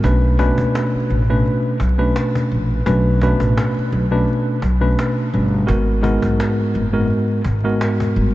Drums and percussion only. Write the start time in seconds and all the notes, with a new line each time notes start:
0.04 cajon bass
0.39 cajon bass
0.58 cajon bass
0.75 cajon slap
1.10 cajon slap
1.46 cajon slap
1.80 cajon bass
2.16 cajon slap
2.35 cajon bass
2.52 cajon slap
2.86 cajon bass
3.21 cajon bass
3.40 cajon bass
3.58 cajon slap
3.77 cajon slap
3.92 cajon slap
4.28 cajon slap
4.62 cajon bass
4.99 cajon slap
5.34 cajon slap
5.69 cajon bass
6.04 cajon bass
6.22 cajon bass
6.40 cajon slap
6.74 cajon slap
7.10 cajon slap
7.45 cajon bass
7.81 cajon slap
8.00 cajon bass
8.17 cajon slap